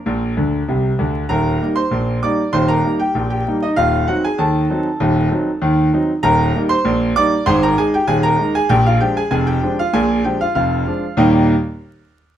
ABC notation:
X:1
M:2/4
L:1/16
Q:1/4=97
K:Eb
V:1 name="Grand piano"
[Bb]6 z2 | [Bb]3 [cc']3 [dd']2 | [cc'] [Bb]2 [Gg]2 [Gg]2 [Ee] | [Ff]2 [_G_g] [Aa] [=A=a]4- |
[=A=a]6 z2 | [Bb]3 [cc']3 [dd']2 | [cc'] [Bb] [Aa] [Gg] [Aa] [Bb]2 [Aa] | [Gg] [Ff] [Gg] [Aa] [Aa] [Gg]2 [Ff] |
[Aa]2 [Gg] [Ff] [Ff]4 | [E,,B,,G,B,EGe]2 z6 |]
V:2 name="Grand piano" clef=bass
[B,,,B,,]2 [D,,D,]2 [C,,C,]2 [D,,D,]2 | [E,,,E,,]2 [G,B,E]2 [B,,,B,,]2 [G,B,E]2 | [E,,,E,,]2 [G,B,E]2 [B,,,B,,]2 [G,B,E]2 | [E,,,E,,]2 [_G,CE]2 [E,,E,]2 [G,CE]2 |
[E,,,E,,]2 [_G,CE]2 [E,,E,]2 [G,CE]2 | [E,,,E,,]2 [G,B,E]2 [B,,,B,,]2 [G,B,E]2 | [A,,,A,,]2 [A,E]2 [E,,,E,,]2 [A,E]2 | [B,,,B,,]2 [F,A,D]2 [F,,,F,,]2 [F,A,D]2 |
[B,,,B,,]2 [F,A,D]2 [F,,,F,,]2 [F,A,D]2 | z8 |]